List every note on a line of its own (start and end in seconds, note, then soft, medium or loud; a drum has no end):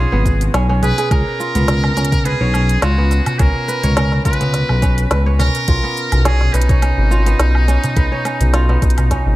0.00 0.12 B3 medium
0.00 0.54 C#4 medium
0.00 1.39 F4 medium
0.00 0.56 G#4 medium
0.00 0.63 B4 medium
0.00 0.70 C#5 medium
0.12 0.49 G#1 loud
0.12 1.55 B3 medium
0.25 kick loud
0.25 closed hi-hat soft
0.25 darbuka tek medium
0.25 shaker medium
0.41 closed hi-hat soft
0.41 darbuka tek medium
0.41 shaker soft
0.54 0.92 B1 medium
0.54 0.69 C#4 medium
0.54 snare loud
0.54 closed hi-hat soft
0.54 low woodblock medium
0.54 shaker soft
0.69 1.11 C#4 medium
0.69 darbuka ka soft
0.69 darbuka tek medium
0.82 0.98 G#4 medium
0.82 1.09 B4 loud
0.82 closed hi-hat soft
0.82 darbuka dum medium
0.82 shaker medium
0.98 2.34 G#4 medium
0.98 closed hi-hat soft
0.98 darbuka ka soft
0.98 darbuka tek medium
0.98 shaker soft
1.11 1.23 C#2 medium
1.11 1.96 C#4 medium
1.11 2.27 A#4 loud
1.11 kick loud
1.11 closed hi-hat medium
1.11 low woodblock medium
1.11 shaker soft
1.40 2.82 F4 medium
1.40 shaker medium
1.55 1.92 C#2 loud
1.55 2.98 B3 medium
1.55 closed hi-hat soft
1.55 darbuka ka soft
1.55 darbuka dum medium
1.55 shaker soft
1.68 snare medium
1.68 closed hi-hat soft
1.68 shaker soft
1.84 snare soft
1.84 low woodblock medium
1.97 2.35 C#2 medium
1.97 2.54 C#4 medium
1.97 closed hi-hat soft
1.97 darbuka tek medium
1.97 shaker medium
2.05 closed hi-hat medium
2.12 kick loud
2.12 closed hi-hat soft
2.12 darbuka ka medium
2.12 darbuka dum medium
2.12 shaker soft
2.25 2.84 G#4 loud
2.25 3.48 B4 medium
2.25 closed hi-hat medium
2.25 darbuka tek medium
2.25 shaker soft
2.41 2.78 B1 loud
2.41 3.56 C#5 medium
2.54 3.39 C#4 medium
2.54 low woodblock medium
2.54 shaker medium
2.69 closed hi-hat soft
2.69 shaker soft
2.82 3.21 C#2 medium
2.82 4.25 F4 medium
2.82 3.41 F#4 medium
2.82 snare medium
2.82 closed hi-hat soft
2.82 shaker soft
2.98 4.40 B3 medium
3.11 closed hi-hat soft
3.11 shaker medium
3.26 closed hi-hat soft
3.26 darbuka tek medium
3.26 darbuka dum medium
3.26 low woodblock medium
3.26 shaker soft
3.39 3.52 C#2 medium
3.39 3.96 C#4 medium
3.39 4.25 A#4 loud
3.39 kick loud
3.39 closed hi-hat medium
3.39 shaker soft
3.68 4.91 B4 medium
3.68 shaker medium
3.83 4.21 C#2 loud
3.83 4.98 C#5 medium
3.83 closed hi-hat soft
3.83 darbuka ka soft
3.83 darbuka dum medium
3.83 shaker soft
3.96 4.82 C#4 medium
3.96 snare medium
3.96 closed hi-hat medium
3.96 low woodblock medium
3.96 shaker soft
4.12 snare soft
4.25 4.64 C#2 medium
4.25 5.68 F4 medium
4.25 5.09 B4 medium
4.25 kick medium
4.25 closed hi-hat soft
4.25 darbuka tek medium
4.25 shaker medium
4.33 closed hi-hat medium
4.41 5.83 B3 medium
4.41 closed hi-hat soft
4.41 darbuka ka medium
4.41 darbuka dum medium
4.41 shaker soft
4.54 snare soft
4.54 closed hi-hat medium
4.54 shaker soft
4.69 5.06 B1 loud
4.69 low woodblock medium
4.82 5.39 C#4 medium
4.82 kick medium
4.82 closed hi-hat soft
4.82 darbuka tek medium
4.82 shaker medium
4.98 closed hi-hat soft
4.98 shaker soft
5.11 5.50 C#2 loud
5.11 6.34 B4 medium
5.11 snare medium
5.11 closed hi-hat soft
5.11 shaker soft
5.26 6.41 C#5 medium
5.26 darbuka ka soft
5.26 darbuka tek medium
5.39 6.25 C#4 medium
5.39 6.27 A#4 loud
5.39 closed hi-hat soft
5.39 darbuka dum medium
5.39 low woodblock medium
5.39 shaker medium
5.55 closed hi-hat soft
5.55 darbuka tek medium
5.55 shaker soft
5.68 5.80 B1 loud
5.68 7.11 F4 medium
5.68 kick loud
5.68 closed hi-hat medium
5.68 shaker soft
5.84 7.26 B3 medium
5.97 shaker medium
6.12 6.49 B1 loud
6.12 closed hi-hat soft
6.12 darbuka ka medium
6.12 darbuka dum medium
6.12 low woodblock medium
6.12 shaker soft
6.25 6.82 C#4 medium
6.25 6.55 G#4 loud
6.25 snare medium
6.25 closed hi-hat medium
6.25 shaker soft
6.41 snare soft
6.54 6.92 B1 medium
6.54 9.36 D#4 medium
6.54 7.77 B4 medium
6.54 closed hi-hat soft
6.54 darbuka tek medium
6.54 shaker medium
6.62 closed hi-hat medium
6.69 7.84 C#5 medium
6.69 kick loud
6.69 closed hi-hat soft
6.69 darbuka ka medium
6.69 darbuka dum medium
6.69 shaker soft
6.82 7.68 C#4 medium
6.82 closed hi-hat medium
6.82 darbuka tek medium
6.82 low woodblock medium
6.82 shaker soft
6.98 7.35 G#1 loud
7.11 8.53 F4 medium
7.11 shaker medium
7.26 8.69 B3 medium
7.26 closed hi-hat soft
7.26 shaker soft
7.39 7.78 B1 medium
7.39 snare medium
7.39 closed hi-hat medium
7.39 shaker soft
7.55 low woodblock medium
7.68 8.25 C#4 medium
7.68 closed hi-hat soft
7.68 shaker medium
7.84 closed hi-hat soft
7.84 darbuka tek medium
7.84 darbuka dum medium
7.84 shaker soft
7.96 8.09 B1 medium
7.96 9.19 B4 medium
7.96 kick loud
7.96 closed hi-hat medium
7.96 shaker soft
8.12 9.27 C#5 medium
8.25 9.11 C#4 medium
8.25 closed hi-hat soft
8.25 low woodblock medium
8.25 shaker medium
8.41 8.78 B1 loud
8.41 closed hi-hat soft
8.41 darbuka ka soft
8.41 darbuka dum medium
8.41 shaker soft
8.54 9.36 F4 medium
8.54 snare medium
8.54 closed hi-hat medium
8.54 shaker soft
8.69 9.36 B3 medium
8.69 snare soft
8.82 9.21 B1 medium
8.82 kick loud
8.82 closed hi-hat soft
8.82 darbuka tek medium
8.82 shaker medium
8.90 closed hi-hat medium
8.98 closed hi-hat soft
8.98 darbuka ka medium
8.98 darbuka dum medium
8.98 low woodblock medium
8.98 shaker soft
9.11 9.36 C#4 medium
9.11 kick medium
9.11 snare soft
9.11 closed hi-hat medium
9.11 shaker soft
9.26 9.36 G#1 loud